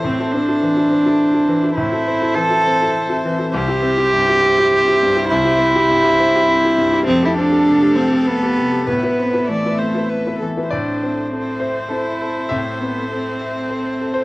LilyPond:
<<
  \new Staff \with { instrumentName = "Viola" } { \time 3/4 \key a \minor \tempo 4 = 101 c''2. | c''2. | c''2.~ | c''2. |
a'2. | b'4 d''8 c''8 b'8 a'8 | c''2.~ | c''2. | }
  \new Staff \with { instrumentName = "String section" } { \time 3/4 \key a \minor << { <c' e''>2. | <c' e''>2.~ | <c' e''>2.~ | <c' e''>2. |
<a f''>2. | <b e''>2. | <c' e''>2.~ | <c' e''>2. | } \\ { a'2. | a'2. | g'2.~ | g'2.~ |
g'2. | a'2. | a'2.~ | a'2. | } >> }
  \new Staff \with { instrumentName = "Grand piano" } { \time 3/4 \key a \minor << { r2. | r2. | r2. | r2. |
r2. | r2. | d''4. c''8 a'4 | e''2~ e''8. c''16 | } \\ { a,16 <e' a'>16 c'16 <e' a'>16 e16 <e' a'>16 c'16 <e' a'>8 <e' a'>16 e16 <e' a'>16 | a,16 <e' a'>16 c'16 <e' a'>16 e16 <e' a'>16 c'16 <e' a'>8 <e' a'>16 e16 <e' a'>16 | c,16 <e' g'>16 c'16 <e' g'>16 g,16 <e' g'>16 c'16 <e' g'>8 <e' g'>16 g,16 <e' g'>16 | c,16 <e' g'>16 c'16 <e' g'>16 g,16 <e' g'>16 c'16 <e' g'>8 <e' g'>16 g,16 <e' g'>16 |
f,16 <g' a'>16 c'16 <g' a'>16 c16 <g' a'>16 c'16 <g' a'>8 <g' a'>16 c16 <g' a'>16 | a,16 <e' b'>16 c'16 <e' b'>16 e16 <e' b'>16 c'16 <e' b'>8 <e' b'>16 e16 <e' b'>16 | a,8 c'8 a'8 e''8 c''8 a'8 | a,8 c'8 a'8 e''8 c''8 a'8 | } >> }
  \new Staff \with { instrumentName = "Cello" } { \time 3/4 \key a \minor c'8 d'2~ d'8 | e'4 a'4. r8 | g'2. | e'2. |
c'16 e'16 d'4 c'8 b4 | b4 a4. r8 | d'4 c'4 e'4 | c'8 b8 c'2 | }
>>